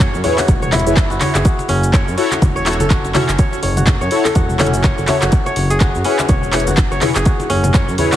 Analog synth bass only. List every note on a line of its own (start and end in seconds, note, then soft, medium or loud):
0.00 0.10 F#1 loud
0.14 0.22 F#2 medium
0.48 0.88 E1 medium
0.87 1.06 F#1 loud
1.11 1.19 F#1 medium
1.35 1.43 F#1 medium
1.69 2.04 F#1 loud
2.08 2.16 F#2 medium
2.42 2.82 E1 medium
2.80 3.00 F#1 loud
3.04 3.13 F#1 medium
3.29 3.37 F#1 medium
3.63 3.97 F#1 loud
4.01 4.09 F#2 medium
4.36 4.75 E1 loud
4.74 4.93 F#1 loud
4.98 5.06 F#1 medium
5.22 5.30 F#1 medium
5.56 5.91 F#1 loud
5.95 6.03 F#2 medium
6.29 6.69 E1 medium
6.67 6.87 F#1 loud
6.91 7.00 F#1 medium
7.16 7.24 F#1 medium
7.50 7.84 F#1 loud
7.88 7.96 F#2 medium